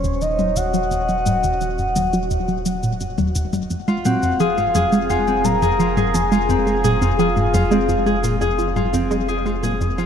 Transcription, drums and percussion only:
0.04 cabasa
0.21 cabasa
0.39 high tom, cabasa
0.56 cabasa
0.74 cabasa
0.91 cabasa
1.09 cabasa
1.26 high tom, cabasa
1.43 cabasa
1.61 cabasa
1.78 cabasa
1.96 high tom, cabasa
2.13 cabasa
2.31 cabasa
2.48 cabasa
2.66 cabasa
2.83 cabasa
3.01 cabasa
3.18 high tom, cabasa
3.35 cabasa
3.53 high tom, cabasa
3.70 cabasa
3.88 cabasa
4.05 high tom, cabasa
4.23 cabasa
4.40 cabasa
4.58 cabasa
4.75 high tom, cabasa
4.92 cabasa
5.10 cabasa
5.27 cabasa
5.45 high tom, cabasa
5.62 cabasa
5.80 cabasa
5.97 high tom, cabasa
6.15 cabasa
6.32 cabasa
6.50 cabasa
6.67 cabasa
6.84 high tom, cabasa
7.02 cabasa
7.19 cabasa
7.37 cabasa
7.54 high tom, cabasa
7.71 cabasa
7.89 cabasa
8.06 cabasa
8.24 cabasa
8.41 cabasa
8.59 cabasa
8.76 high tom, cabasa
8.94 cabasa
9.11 high tom, cabasa
9.29 cabasa
9.46 cabasa
9.63 high tom, cabasa
9.81 cabasa
9.98 cabasa

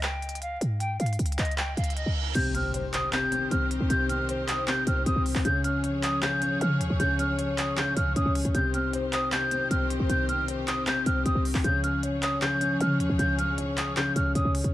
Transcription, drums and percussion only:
0.03 clap, closed hi-hat
0.22 closed hi-hat
0.29 closed hi-hat
0.35 closed hi-hat
0.42 closed hi-hat
0.61 closed hi-hat
0.80 closed hi-hat
1.00 closed hi-hat
1.06 closed hi-hat
1.13 closed hi-hat
1.19 closed hi-hat
1.26 closed hi-hat
1.32 closed hi-hat
1.39 clap, closed hi-hat
1.45 closed hi-hat
1.51 closed hi-hat
1.58 clap, closed hi-hat
1.77 closed hi-hat
1.84 closed hi-hat
1.90 closed hi-hat
1.97 closed hi-hat
2.35 closed hi-hat, crash
2.55 closed hi-hat
2.74 closed hi-hat
2.93 clap, closed hi-hat
3.13 clap, closed hi-hat
3.32 closed hi-hat
3.51 closed hi-hat
3.71 closed hi-hat
3.90 closed hi-hat
4.09 closed hi-hat
4.29 closed hi-hat
4.48 clap, closed hi-hat
4.68 clap, closed hi-hat
4.87 closed hi-hat
5.06 closed hi-hat
5.26 open hi-hat
5.35 clap
5.45 closed hi-hat
5.64 closed hi-hat
5.84 closed hi-hat
6.03 clap, closed hi-hat
6.22 clap, closed hi-hat
6.42 closed hi-hat
6.61 closed hi-hat
6.81 closed hi-hat
7.00 closed hi-hat
7.19 closed hi-hat
7.39 closed hi-hat
7.58 clap, closed hi-hat
7.77 clap, closed hi-hat
7.97 closed hi-hat
8.16 closed hi-hat
8.35 closed hi-hat, open hi-hat
8.45 closed hi-hat
8.55 closed hi-hat
8.74 closed hi-hat
8.93 closed hi-hat
9.13 clap, closed hi-hat
9.32 clap, closed hi-hat
9.51 closed hi-hat
9.71 closed hi-hat
9.90 closed hi-hat
10.10 closed hi-hat
10.29 closed hi-hat
10.48 closed hi-hat
10.68 clap, closed hi-hat
10.87 clap, closed hi-hat
11.06 closed hi-hat
11.26 closed hi-hat
11.45 open hi-hat
11.55 clap
11.64 closed hi-hat
11.84 closed hi-hat
12.03 closed hi-hat
12.23 clap, closed hi-hat
12.42 clap, closed hi-hat
12.61 closed hi-hat
12.81 closed hi-hat
13.00 closed hi-hat
13.19 closed hi-hat
13.39 closed hi-hat
13.58 closed hi-hat
13.77 clap, closed hi-hat
13.97 clap, closed hi-hat
14.16 closed hi-hat
14.35 closed hi-hat
14.55 closed hi-hat, open hi-hat
14.64 closed hi-hat

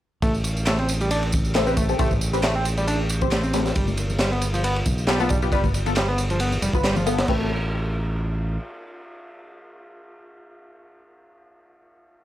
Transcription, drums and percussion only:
0.22 kick, ride, tambourine
0.34 tambourine
0.44 ride, tambourine
0.57 tambourine
0.66 snare, clap, ride, tambourine
0.78 ride
0.89 ride, tambourine
1.00 ride, tambourine
1.11 ride, tambourine
1.23 ride
1.32 kick, ride, tambourine
1.45 tambourine
1.55 snare, clap, ride, tambourine
1.67 tambourine
1.77 kick, ride, tambourine
1.89 tambourine
1.99 kick, ride, tambourine
2.11 kick, tambourine
2.21 ride, tambourine
2.33 ride, tambourine
2.43 snare, clap, ride, tambourine
2.65 ride, tambourine
2.77 ride, tambourine
2.88 ride, tambourine
3.09 ride, tambourine
3.21 kick, tambourine
3.31 snare, clap, ride, tambourine
3.43 tambourine
3.53 snare, ride, tambourine
3.66 snare, tambourine
3.75 kick, ride, tambourine
3.88 tambourine, high conga
3.97 ride, tambourine
4.10 tambourine, low conga
4.19 snare, clap, ride, tambourine
4.33 ride
4.41 ride, tambourine
4.54 ride, tambourine
4.64 ride, tambourine
4.76 ride
4.86 kick, ride, tambourine
4.98 tambourine
5.07 snare, clap, ride, tambourine
5.20 tambourine, high conga
5.29 kick, ride, tambourine
5.42 tambourine
5.52 kick, ride, tambourine
5.64 kick, tambourine, high conga
5.74 ride, tambourine
5.86 ride, tambourine, low conga
5.96 snare, clap, ride, tambourine
6.18 ride, tambourine
6.30 ride, tambourine
6.40 ride, tambourine
6.52 tambourine, low conga
6.62 ride, tambourine
6.73 kick, tambourine
6.84 snare, clap, ride, tambourine
6.96 tambourine, high conga, low conga
7.06 ride, tambourine
7.18 snare, ride, tambourine
7.28 kick, crash

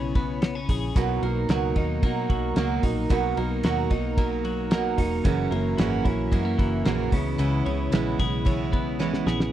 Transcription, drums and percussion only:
0.15 kick, ride
0.42 snare, ride
0.69 kick, open hi-hat, ride
0.96 kick, hi-hat pedal, ride
1.23 ride
1.49 snare, ride
1.76 kick, ride
2.03 kick, ride
2.30 kick, ride
2.56 snare, ride
2.83 kick, open hi-hat, ride
3.10 kick, hi-hat pedal, ride
3.37 ride
3.63 snare, ride
3.91 kick, ride
4.17 kick, ride
4.45 ride
4.71 snare, ride
4.98 kick, open hi-hat, ride
5.25 kick, hi-hat pedal, ride
5.52 ride
5.78 snare, ride
6.05 kick, ride
6.32 kick, ride
6.59 kick, ride
6.85 snare, ride
7.12 kick, open hi-hat, ride
7.39 hi-hat pedal, ride
7.66 ride
7.92 snare, ride
8.19 kick, ride
8.46 kick, ride
8.73 kick, ride
9.00 snare
9.14 snare
9.27 snare
9.40 snare

